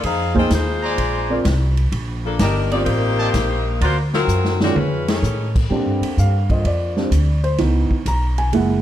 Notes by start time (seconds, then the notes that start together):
0.03 F2 D#4 G#4 C5 F5, kick, ride
0.35 A#3 C4 D#4 F4 G#4 C5 D#5, kick
0.50 D#2 G#3 D#4 F4 C5, kick, snare, hi-hat pedal, ride
0.83 C5 D5 G#5 A#5
0.98 A#1, kick, ride
1.30 C4 F4 A#4 D5
1.45 C2, kick, snare, hi-hat pedal, ride
1.77 ride
1.92 A#1, kick, ride
2.25 F3 A#3 D4 A4
2.39 G1 G3 D4 D#4 A#4 D5 D#5 G5 A#5, kick, snare, hi-hat pedal, ride
2.71 A#3 C4 D#4 F4 G4 A#4 D5, ride
2.85 A1 A#3 D#4 G4 C5, kick, ride
3.19 D5 D#5 G5 A5
3.34 A#1, kick, snare, hi-hat pedal, ride
3.81 D2 A#3 F4 F#4 C5 D5 F#5 A#5, kick, ride
4.13 F#3 C4 F4 A#4, snare
4.27 F#2, hi-hat pedal
4.45 snare
4.60 D#3 G#3 C4 C#4 F4 F#4 A#4 D5, snare
4.76 F2 G#3 C#4 F4 B4, high tom
5.08 D#3 C#4 G#4 A4, snare, ride
5.22 A2, hi-hat pedal
5.56 kick, crash
5.69 A#2 D3 G3 A#3 C4 D4 G4, kick
5.86 G2
6.01 F2, ride
6.18 G2 F5, kick, hi-hat pedal
6.49 D3 A#3 C4 F4 D#5, kick, ride
6.65 F2 D5, kick, ride
6.96 G3 C4 D4, snare
7.11 D2, kick, hi-hat pedal, ride
7.44 C5, ride
7.58 C#2 E3 B3 D#4, kick, snare, ride
7.90 muted upright bass stroke, kick
8.06 B1 A#5, kick, hi-hat pedal, ride
8.38 G#5, ride
8.53 F#1 G#3 A#3 E4 F#5, kick, ride